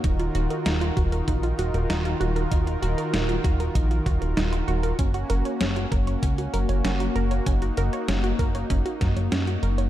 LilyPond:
<<
  \new Staff \with { instrumentName = "Synth arpeggio sound" } { \time 4/4 \key ees \minor \tempo 4 = 97 ees'16 f'16 ges'16 bes'16 ees'16 f'16 ges'16 bes'16 ees'16 f'16 ges'16 bes'16 ees'16 f'16 ges'16 bes'16 | ees'16 f'16 ges'16 bes'16 ees'16 f'16 ges'16 bes'16 ees'16 f'16 ges'16 bes'16 ees'16 f'16 ges'16 bes'16 | des'16 ges'16 bes'16 des''16 des'16 ges'16 bes'16 des''16 des'16 ges'16 bes'16 des''16 des'16 ges'16 bes'16 des''16 | des'16 ges'16 bes'16 des''16 des'16 ges'16 bes'16 des''16 des'16 ges'16 bes'16 des''16 des'16 ges'16 bes'16 des''16 | }
  \new Staff \with { instrumentName = "Analog synth pad" } { \time 4/4 \key ees \minor << { <ees f' bes'>1~ | <ees f' bes'>1 | <bes ges'>1~ | <bes ges'>1 | } \\ { <ees' ges'>1~ | <ees' ges'>1 | des'1 | ees'1 | } >> }
  \new Staff \with { instrumentName = "Analog synth bass" } { \clef bass \time 4/4 \key ees \minor ees,,8 ees,,16 r16 ees,,8 ees,,8 bes,,8 ees,,16 ees,,16 ees,,8 ees,,8 | ees,,8 ees,,16 r16 ees,,8 ees,,8 bes,,8 ees,,16 ees,,16 ees,,8 ees,,8 | ges,,8 ges,,16 r16 ges,,8 ges,,8 des,8 ges,,16 ges,,16 ges,,8 ges,,8 | ges,,8 ges,,16 r16 ges,,8 ges,,8 ges,,16 r16 ges,16 ges,,16 ges,8 ges,,8 | }
  \new DrumStaff \with { instrumentName = "Drums" } \drummode { \time 4/4 <hh bd>16 hh16 hh16 hh16 <hh sn>16 hh16 <hh bd>16 hh16 <hh bd>16 hh16 hh16 hh16 <hh sn>16 hh16 hh16 hh16 | <hh bd>16 hh16 hh16 hh16 <hh sn>16 hh16 <hh bd>16 hh16 <hh bd>16 hh16 <hh bd>16 hh16 <hh sn>16 hh16 hh16 hh16 | <hh bd>16 hh16 hh16 hh16 <hh sn>16 hh16 <hh bd>16 hh16 <hh bd>16 hh16 hh16 hh16 <hh sn>16 hh16 hh16 hh16 | <hh bd>16 hh16 hh16 hh16 <hh sn>16 hh16 <hh bd>16 hh16 <hh bd>16 hh16 <hh bd sn>16 hh16 <hh sn>16 hh16 hh16 hh16 | }
>>